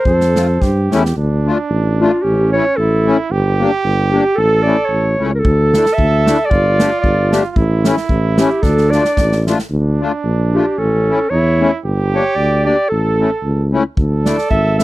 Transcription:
Already playing: clarinet C5
0.05 tuba F2, trumpet A4, kick
0.21 snare
0.34 accordion A3 C4 F4, snare
0.61 tuba G2, trumpet G4, kick, snare
0.91 tuba E2, accordion A3 C#4 E4, snare
1.05 snare
1.16 tuba D2, trumpet D4
1.46 accordion A3 D4 F4
1.70 tuba A1
1.99 accordion A3 D4 F4, clarinet F4
2.19 trumpet D4, clarinet G4
2.24 tuba A1, trumpet C#4
2.53 accordion A3 C#4 E4, clarinet C#5
2.76 tuba A1, trumpet E4, clarinet A4
3.05 accordion A3 C#4 E4
3.30 tuba G1, trumpet G4
3.59 accordion A#3 D4 G4
3.84 tuba G1
4.11 accordion A#3 D4 G4, clarinet G4
4.35 tuba A1, clarinet A4, trumpet A4
4.63 accordion A3 C#4 E4, clarinet D5
4.86 tuba A1, clarinet C#5
5.18 tuba C#2, accordion A3 C#4 E4
5.35 clarinet A#4
5.39 clarinet A4
5.44 tuba D2, trumpet A4, kick
5.74 accordion A3 D4 E4, snare
5.86 snare
5.94 tuba D2, clarinet E5
5.98 kick
6.25 accordion A3 D4 E4, snare
6.45 clarinet D5
6.50 tuba G1, trumpet F4, kick
6.79 accordion A3 D4 G4, snare
7.01 tuba G1, clarinet D5, kick
7.30 accordion A3 D4 G4, snare
7.50 trumpet F4
7.56 tuba A1, trumpet E4, kick
7.83 accordion A3 C#4 E4, snare
7.97 snare
8.09 tuba A1, kick
8.37 accordion A3 C#4 E4, clarinet G4, snare
8.62 tuba D2, trumpet D4, clarinet A4, kick, snare
8.78 snare
8.90 accordion A3 D4 F4, clarinet D5, snare
9.05 snare
9.17 tuba A1, kick, snare
9.32 snare
9.46 accordion A3 D4 F4, snare
9.59 snare
9.70 tuba D2, trumpet D4
10.00 accordion A3 D4 F4
10.24 tuba A#1
10.53 accordion A3 D4 F4, clarinet G4
10.78 tuba A1, trumpet C#4, clarinet A4
11.08 accordion A3 C#4 E4
11.30 tuba E2, trumpet E4, clarinet C#5
11.59 accordion A3 C#4 E4
11.84 tuba G1, trumpet G4
12.13 accordion A#3 D4 G4, clarinet C#5
12.36 tuba D2, clarinet D5
12.64 accordion A#3 D4 G4, clarinet D5
12.89 tuba A1, clarinet A4, trumpet A4
13.19 accordion A3 C#4 E4
13.43 tuba C#2
13.72 accordion A3 C#4 E4
13.97 tuba D2, trumpet A4, kick
14.25 accordion A3 D4 E4, clarinet D5, snare
14.38 snare
14.50 tuba G#1, clarinet E5, kick
14.78 accordion A3 D4 E4, clarinet E5, snare

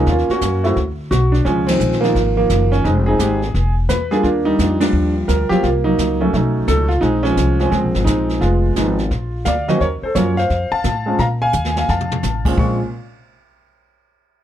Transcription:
0.06 upright bass D#2, grand piano F4, brush sweep, kick, snare
0.11 grand piano A#3 C#4
0.18 snare
0.29 grand piano A#3 C#4 F#4, muted upright bass stroke, snare
0.41 upright bass F#2, kick, snare, hi-hat pedal
0.64 grand piano A3 C4 E4 F#4, snare
0.76 upright bass D2, brush sweep, kick, snare
1.11 upright bass B1, grand piano F#4, kick, snare, hi-hat pedal
1.32 grand piano D4, snare
1.45 upright bass C#2, grand piano F3 G#3 C#4, brush sweep, kick, snare
1.67 grand piano D#3 F3 C4, snare, ride
1.80 upright bass A#1, hi-hat pedal
1.92 snare
2.00 grand piano D#3 F3 A#3 C4 D#4 F4, snare
2.15 upright bass G#1, brush sweep, kick, snare
2.37 grand piano D#3 F3 A#3
2.50 upright bass F#1, kick, snare, hi-hat pedal
2.72 grand piano C#4, snare
2.84 upright bass F1, grand piano G#3 C4 D#4, brush sweep, kick, snare
3.06 grand piano C4 D#4 G#4
3.19 upright bass G#1, grand piano G#3 C4 D#4 G4, kick, snare, hi-hat pedal
3.42 snare
3.54 upright bass E1, brush sweep, kick, snare
3.89 upright bass E2, grand piano B4, kick, snare, hi-hat pedal
4.11 grand piano G3 A#3 D4 F4 G#4, snare
4.23 upright bass D#2, grand piano A#3 D4 F4, brush sweep, kick, snare
4.45 grand piano G3 A#3 D#4
4.59 upright bass F2, grand piano G3 A#3 D4 F4, kick, snare, hi-hat pedal
4.80 grand piano F3 G3 D4, snare, ride
4.93 upright bass D#2, brush sweep
5.28 upright bass D2, grand piano A#4, kick, snare, hi-hat pedal
5.49 grand piano F#3 A#3 C4 F4 G4, muted upright bass stroke, snare
5.63 upright bass C2, grand piano A#3 F4, brush sweep, kick, snare
5.84 grand piano F#3 A#3 D#4
5.98 upright bass C#2, kick, snare, hi-hat pedal
6.21 grand piano F#3 A3 C#4
6.33 upright bass B1, grand piano F#3 A3 C#4 D#4, brush sweep, kick, snare
6.68 upright bass C#2, grand piano A4, kick, snare, hi-hat pedal
6.88 grand piano F4, snare
7.01 upright bass A#1, grand piano G#3 C4 D#4, brush sweep, kick, snare
7.23 grand piano F3 G#3 C#4, snare
7.37 upright bass C2, kick, snare, hi-hat pedal
7.59 grand piano F3 G#3 C4 C#4, snare
7.70 upright bass C#2, grand piano F3 G#3 C4, brush sweep, kick, snare
7.84 upright bass A#1
7.94 upright bass G#1, snare
8.05 upright bass A#1, grand piano G#3 C4 D#4, kick, snare, hi-hat pedal
8.29 snare
8.41 upright bass F1, grand piano G#3 B3 F4, brush sweep, kick, snare
8.76 upright bass G#1, grand piano F3 G#3 B3 D#4, kick, snare, hi-hat pedal
8.98 snare
9.11 upright bass A#1, brush sweep, kick, snare
9.45 upright bass D2, grand piano D5 F5, kick, snare, hi-hat pedal
9.68 grand piano D#2 F#3 A#3 C#4 F#4 C5 D#5, snare
9.80 upright bass D#2, grand piano A#4 C#5, brush sweep, kick, snare
10.02 grand piano A4 C5, muted upright bass stroke
10.15 upright bass F#2, grand piano F#3 A#3 C#4 F4 A#4 C#5, kick, snare, hi-hat pedal
10.37 grand piano C5 F5, snare
10.50 upright bass F2, brush sweep, kick, snare
10.71 grand piano F5 A5, muted upright bass stroke
10.84 upright bass A2, kick, snare, hi-hat pedal
11.06 grand piano G#3 C4 C#4 F4
11.18 upright bass A#2, grand piano F5 A#5, brush sweep, kick, snare
11.42 grand piano F5 G#5
11.53 upright bass D#2, hi-hat pedal
11.65 snare
11.76 grand piano F5 G#5, snare
11.89 upright bass F2, grand piano F5 A5, snare
12.00 mid tom
12.12 mid tom
12.23 upright bass A1, snare, hi-hat pedal
12.45 grand piano A#2 G#3 C4 C#4 F4, kick, crash
12.57 upright bass A#1, grand piano G#3 C4 C#4 F4 C#6, kick

